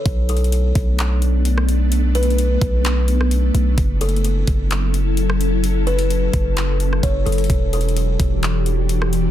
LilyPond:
<<
  \new Staff \with { instrumentName = "Kalimba" } { \time 4/4 \key b \minor \tempo 4 = 129 r8 a'8 r2. | r8 b'8 r2. | r8 a'8 r2. | r8 b'8 r2 cis''8 a'8 |
r8 a'8 r2. | }
  \new Staff \with { instrumentName = "Ambient pad" } { \time 4/4 \key b \minor <a b d'>1~ | <a b d'>1 | <fis cis' e' a'>1~ | <fis cis' e' a'>1 |
<e d' fis' g'>1 | }
  \new Staff \with { instrumentName = "808-style bass" } { \clef bass \time 4/4 \key b \minor b,,4. b,,2~ b,,8~ | b,,4. b,,2 b,,8 | fis,,4. fis,,2~ fis,,8~ | fis,,4. fis,,4. fis,,8 fis,,8 |
e,,4. e,,2~ e,,8 | }
  \new DrumStaff \with { instrumentName = "Drums" } \drummode { \time 4/4 \tuplet 3/2 { <hh bd>16 r16 r16 hh16 hh16 hh16 } hh8 <hh bd>8 <hc hh>8 hh8 hh16 ss16 hh8 | \tuplet 3/2 { hh16 r16 r16 hh16 hh16 hh16 } hh8 <hh bd>8 <hc hh>8 hh16 ss16 hh8 hh8 | \tuplet 3/2 { <hh bd>16 r16 r16 hh16 hh16 hh16 } hh8 <hh bd>8 <hc hh>8 hh8 hh16 ss16 hh8 | hh8 hh16 hh16 hh8 <hh bd>8 <hc hh>8 hh16 ss16 <hh bd>8 hh32 hh32 hh32 hh32 |
\tuplet 3/2 { <hh bd>16 r16 r16 hh16 hh16 hh16 } hh8 <hh bd>8 <hc hh>8 hh8 hh16 ss16 hh8 | }
>>